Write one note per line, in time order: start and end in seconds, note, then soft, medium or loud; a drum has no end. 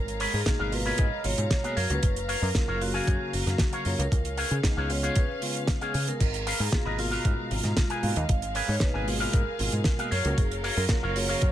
0.00 0.26 G#1 loud
0.00 1.73 G#3 medium
0.00 0.30 A#4 loud
0.00 4.08 F5 medium
0.00 4.08 A#5 medium
0.08 closed hi-hat medium
0.20 0.40 G#4 loud
0.20 0.40 A#4 loud
0.20 0.40 B4 loud
0.20 0.40 C#5 loud
0.20 open hi-hat loud
0.34 0.42 G#2 loud
0.34 0.74 G#4 loud
0.46 0.69 B2 medium
0.46 0.69 G#3 medium
0.46 0.70 A#3 medium
0.46 0.70 D#4 medium
0.46 kick loud
0.46 snare loud
0.46 closed hi-hat medium
0.59 0.91 G#1 medium
0.59 0.72 G#4 medium
0.59 0.73 A#4 medium
0.59 0.73 B4 medium
0.59 0.73 F5 loud
0.71 0.82 B2 medium
0.71 0.82 G#3 medium
0.71 0.83 A#3 medium
0.71 0.83 F4 medium
0.71 1.00 B4 loud
0.71 open hi-hat medium
0.85 1.06 B2 medium
0.85 1.06 G#3 medium
0.85 1.06 A#3 medium
0.85 1.06 F4 medium
0.85 1.25 G#4 loud
0.85 1.25 A#4 loud
0.85 1.25 B4 loud
0.85 1.25 C#5 loud
0.98 1.07 G#2 medium
0.98 1.26 D#5 loud
0.98 kick loud
0.98 closed hi-hat medium
1.12 muted picked electric bass stroke soft
1.24 1.33 G#1 medium
1.24 1.61 B2 medium
1.24 1.61 G#3 medium
1.24 1.61 F4 medium
1.24 1.79 C#5 loud
1.24 open hi-hat loud
1.38 1.46 G#2 medium
1.38 closed hi-hat medium
1.51 kick loud
1.51 snare loud
1.51 closed hi-hat medium
1.64 1.75 B2 medium
1.64 1.75 G#3 medium
1.64 1.75 A#3 medium
1.64 1.76 G#4 loud
1.64 1.77 G#4 medium
1.64 1.75 A#4 medium
1.64 1.76 B4 medium
1.64 1.76 F5 loud
1.64 closed hi-hat medium
1.77 1.85 F#2 medium
1.77 4.09 F#3 medium
1.77 2.19 F#4 medium
1.77 2.19 A#4 medium
1.77 1.91 A#4 medium
1.77 2.19 C#5 medium
1.77 2.19 F5 loud
1.77 open hi-hat medium
1.89 1.98 C#2 loud
1.89 2.02 C#3 medium
1.89 2.03 F#3 medium
1.89 2.03 A#3 medium
1.89 2.03 F#4 medium
1.89 2.44 B4 medium
1.89 closed hi-hat medium
2.03 2.35 F#1 loud
2.03 kick loud
2.03 closed hi-hat loud
2.16 closed hi-hat medium
2.28 2.49 F#4 medium
2.28 2.49 A#4 loud
2.28 2.49 C#5 loud
2.28 2.49 F5 loud
2.28 open hi-hat loud
2.42 2.50 F#2 loud
2.42 2.55 A#4 medium
2.54 2.78 C#3 medium
2.54 2.78 F#3 medium
2.54 2.78 A#3 medium
2.54 2.78 F4 loud
2.54 kick loud
2.54 snare loud
2.54 closed hi-hat medium
2.68 3.00 F#1 medium
2.68 2.81 F#4 medium
2.68 2.81 A#4 medium
2.68 2.81 C#5 medium
2.68 2.81 F5 loud
2.80 2.91 C#3 medium
2.80 2.91 F#3 medium
2.80 2.91 A#3 medium
2.80 2.92 F4 medium
2.80 3.89 F#4 medium
2.80 open hi-hat medium
2.94 3.82 C#3 medium
2.94 3.83 F#3 medium
2.94 3.83 A#3 medium
2.94 3.33 F#4 loud
2.94 3.33 A#4 loud
2.94 3.33 C#5 loud
2.94 3.83 F5 medium
2.94 3.33 G#5 loud
3.08 3.16 F#2 medium
3.08 kick loud
3.08 closed hi-hat medium
3.33 3.42 F#1 medium
3.33 open hi-hat loud
3.47 3.55 F#2 loud
3.47 snare soft
3.47 closed hi-hat medium
3.58 kick loud
3.58 snare loud
3.58 closed hi-hat medium
3.72 4.05 F#4 medium
3.72 4.05 A#4 medium
3.72 4.05 C#5 medium
3.72 4.05 F5 loud
3.72 closed hi-hat medium
3.85 3.94 F#2 medium
3.85 3.99 C#3 medium
3.85 3.99 F#3 medium
3.85 3.99 A#3 medium
3.85 3.99 F4 medium
3.85 3.92 C#5 medium
3.85 open hi-hat medium
3.99 4.07 C#2 loud
3.99 4.53 A#4 medium
3.99 closed hi-hat medium
4.11 4.43 C#2 loud
4.11 6.18 C#4 medium
4.11 6.18 F5 medium
4.11 kick loud
4.11 closed hi-hat medium
4.25 closed hi-hat medium
4.37 4.57 G#4 loud
4.37 4.57 B4 loud
4.37 4.57 C#5 loud
4.37 4.57 F5 loud
4.37 open hi-hat loud
4.51 4.59 C#3 loud
4.51 4.92 G#4 medium
4.51 closed hi-hat medium
4.63 4.87 C#3 medium
4.63 4.87 G#3 medium
4.63 4.87 B3 medium
4.63 4.87 D#4 medium
4.63 kick loud
4.63 snare loud
4.63 closed hi-hat medium
4.77 5.08 C#2 medium
4.77 4.90 G#4 medium
4.77 4.90 B4 medium
4.77 4.90 C#5 medium
4.77 4.90 F5 loud
4.89 5.00 C#3 medium
4.89 5.00 G#3 medium
4.89 5.00 B3 medium
4.89 5.00 F4 medium
4.89 5.17 C#5 medium
4.89 open hi-hat medium
5.03 5.23 C#3 medium
5.03 5.24 G#3 medium
5.03 5.24 B3 medium
5.03 5.24 F4 medium
5.03 5.42 G#4 loud
5.03 5.42 B4 medium
5.03 5.42 C#5 loud
5.03 5.42 F5 loud
5.03 closed hi-hat medium
5.15 5.65 B4 medium
5.15 kick loud
5.15 closed hi-hat medium
5.42 5.78 C#3 medium
5.42 5.78 G#3 medium
5.42 5.78 B3 medium
5.42 5.79 F4 medium
5.42 open hi-hat loud
5.55 closed hi-hat medium
5.67 kick loud
5.67 snare loud
5.67 closed hi-hat loud
5.81 5.94 C#3 medium
5.81 5.94 G#3 medium
5.81 5.94 B3 medium
5.81 5.94 G#4 loud
5.81 6.14 G#4 medium
5.81 6.14 B4 medium
5.81 6.14 C#5 medium
5.81 6.14 F5 loud
5.81 closed hi-hat medium
5.94 6.11 C#3 loud
5.94 6.09 G#4 medium
5.94 open hi-hat loud
6.07 6.19 C#3 medium
6.07 6.19 G#3 medium
6.07 6.19 B3 medium
6.07 6.19 G#4 medium
6.07 6.57 A#4 loud
6.07 closed hi-hat medium
6.20 6.52 G#1 loud
6.20 10.08 G#3 medium
6.20 11.52 F5 medium
6.20 8.27 A#5 medium
6.20 kick loud
6.20 closed hi-hat medium
6.20 crash medium
6.34 closed hi-hat medium
6.46 6.66 G#4 loud
6.46 6.66 A#4 loud
6.46 6.66 B4 loud
6.46 6.66 F5 loud
6.46 open hi-hat loud
6.60 6.68 G#2 loud
6.60 6.66 G#4 loud
6.72 6.95 B2 medium
6.72 6.96 G#3 medium
6.72 6.96 A#3 medium
6.72 6.96 F4 medium
6.72 7.00 G#4 loud
6.72 kick loud
6.72 snare loud
6.72 closed hi-hat medium
6.85 7.17 G#1 medium
6.85 6.99 G#4 medium
6.85 6.99 A#4 medium
6.85 6.99 B4 medium
6.85 6.99 D#5 medium
6.98 7.09 B2 medium
6.98 7.09 G#3 medium
6.98 7.09 A#3 medium
6.98 7.09 F4 medium
6.98 8.06 F4 loud
6.98 open hi-hat loud
7.11 7.99 B2 medium
7.11 8.00 G#3 medium
7.11 8.00 F4 medium
7.11 7.51 G#4 loud
7.11 7.51 A#4 loud
7.11 7.51 B4 loud
7.11 7.51 F5 loud
7.25 7.33 G#2 medium
7.25 kick loud
7.25 closed hi-hat medium
7.51 7.59 G#1 medium
7.51 open hi-hat loud
7.63 7.72 G#2 medium
7.63 snare soft
7.63 closed hi-hat medium
7.77 kick loud
7.77 snare loud
7.77 closed hi-hat medium
7.90 8.23 G#4 medium
7.90 8.23 A#4 medium
7.90 8.23 B4 medium
7.90 8.23 G#5 loud
7.90 closed hi-hat medium
8.03 8.12 G#2 medium
8.03 8.16 B2 medium
8.03 8.16 G#3 medium
8.03 8.16 A#3 medium
8.03 8.16 F4 medium
8.03 8.17 F5 loud
8.03 open hi-hat loud
8.16 8.25 D#2 loud
8.16 8.30 D#5 loud
8.16 closed hi-hat medium
8.29 8.61 G#1 loud
8.29 10.10 G#4 medium
8.29 8.66 F5 loud
8.29 kick loud
8.29 closed hi-hat loud
8.42 closed hi-hat medium
8.55 8.75 G#4 loud
8.55 8.75 A#4 loud
8.55 8.75 B4 loud
8.55 8.75 C#5 loud
8.55 open hi-hat loud
8.69 8.77 G#2 loud
8.69 8.82 C#5 loud
8.80 9.04 B2 medium
8.80 9.04 G#3 medium
8.80 9.04 A#3 medium
8.80 9.05 D#4 medium
8.80 9.08 B4 loud
8.80 kick loud
8.80 snare loud
8.80 closed hi-hat medium
8.94 9.26 G#1 medium
8.94 9.07 G#4 medium
8.94 9.07 A#4 medium
8.94 9.07 B4 medium
8.94 9.07 G#5 loud
9.07 9.17 B2 medium
9.07 9.17 G#3 medium
9.07 9.18 A#3 medium
9.07 9.18 F4 loud
9.07 9.34 G#4 loud
9.07 open hi-hat loud
9.20 9.41 B2 medium
9.20 9.41 G#3 medium
9.20 9.41 A#3 medium
9.20 9.41 F4 medium
9.20 9.59 G#4 loud
9.20 9.59 A#4 loud
9.20 9.59 B4 loud
9.20 9.60 F5 loud
9.33 9.42 G#2 medium
9.33 10.14 A#4 loud
9.33 kick loud
9.33 closed hi-hat loud
9.47 muted picked electric bass stroke soft
9.59 9.68 G#1 medium
9.59 9.96 B2 medium
9.59 9.96 G#3 medium
9.59 9.96 F4 loud
9.59 open hi-hat loud
9.72 9.81 G#2 medium
9.72 closed hi-hat medium
9.84 kick loud
9.84 snare loud
9.84 closed hi-hat loud
9.98 10.10 B2 medium
9.98 10.10 G#3 medium
9.98 10.10 A#3 medium
9.98 10.10 G#4 loud
9.98 10.12 G#4 medium
9.98 10.10 A#4 medium
9.98 10.11 B4 medium
9.98 10.10 F5 loud
9.98 closed hi-hat medium
10.11 10.20 F#2 medium
10.11 11.52 F#3 medium
10.11 10.54 F#4 medium
10.11 11.52 A#4 medium
10.11 10.54 A#4 medium
10.11 10.54 C#5 medium
10.11 10.24 C#5 loud
10.11 10.54 F5 loud
10.11 open hi-hat medium
10.25 10.33 C#2 loud
10.25 10.37 C#3 medium
10.25 10.38 F#3 medium
10.25 10.38 A#3 medium
10.25 10.38 F#4 medium
10.25 10.37 A#4 loud
10.25 closed hi-hat medium
10.38 10.69 F#1 loud
10.38 10.78 G#4 loud
10.38 kick loud
10.38 closed hi-hat medium
10.52 closed hi-hat medium
10.64 10.84 F#4 loud
10.64 10.84 A#4 loud
10.64 10.84 C#5 loud
10.64 10.84 F5 loud
10.64 open hi-hat loud
10.77 10.85 F#2 loud
10.77 11.17 A#4 loud
10.89 11.13 C#3 medium
10.89 11.13 F#3 medium
10.89 11.13 A#3 medium
10.89 11.13 F4 medium
10.89 kick loud
10.89 snare loud
10.89 closed hi-hat medium
11.03 11.34 F#1 medium
11.03 11.16 F#4 medium
11.03 11.16 A#4 medium
11.03 11.16 C#5 medium
11.03 11.16 F5 loud
11.16 11.26 C#3 medium
11.16 11.26 F#3 medium
11.16 11.26 A#3 medium
11.16 11.27 F4 medium
11.16 11.52 C#5 loud
11.16 open hi-hat loud
11.29 11.52 C#3 medium
11.29 11.52 F#3 medium
11.29 11.52 A#3 medium
11.29 11.52 F#4 loud
11.29 11.52 A#4 medium
11.29 11.52 C#5 loud
11.29 11.52 F5 loud
11.29 11.52 F5 medium
11.41 11.50 F#2 medium
11.41 kick loud
11.41 closed hi-hat medium